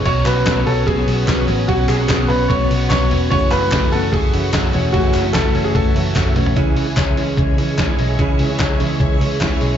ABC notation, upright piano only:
X:1
M:4/4
L:1/16
Q:1/4=148
K:F#m
V:1 name="Upright piano"
c2 B4 A2 G8 | F2 G2 G2 B2 c4 c4 | c2 B4 A2 G8 | F4 A3 G A6 z2 |
z16 | z16 |]